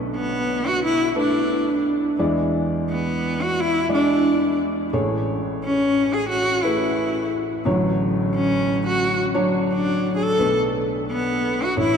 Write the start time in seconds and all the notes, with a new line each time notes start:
Already playing: B1 B2 A3 D4 B4
0.15 B3
0.68 F#4
0.85 E4
1.15 A3 D4 B4
1.20 D4
2.19 E2 E3 G#3 E4 D5
2.90 B3
3.42 F#4
3.60 E4
3.89 G#3 E4 D5
3.94 D4
4.93 A1 A2 A3 G#4 C#5
5.64 C#4
6.14 G#4
6.29 F#4
6.63 A3 E4 G#4 B4
7.65 A1 A2 D3 F#3 C#5
8.35 C#4
8.87 F#4
9.35 F#3 D4 C#5
9.73 D4
10.16 G#4
10.22 A4
10.38 B1 B2 A3 D4 B4
11.11 B3
11.64 F#4
11.76 A1 A2 A3 E4 C#5
11.81 E4